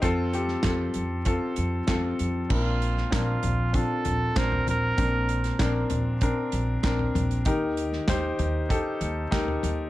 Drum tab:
CC |----------------|x---------------|----------------|----------------|
HH |x-x-x-x-x-x-x-x-|--x-x-x-x-x-x-x-|x-xxx-x-x-x-x-xx|x-x-x-x-x-x-x-x-|
CP |----x-------x---|----x-------x---|----x-------x---|----x-------x---|
SD |---oo-------o---|---oo-------o---|---oo-------o---|---oo-------o---|
FT |----------------|------o---o--oo-|------o------oo-|------o------oo-|
BD |o---o---o---o---|o---o---o---o---|o---o---o---o---|o---o---o---o---|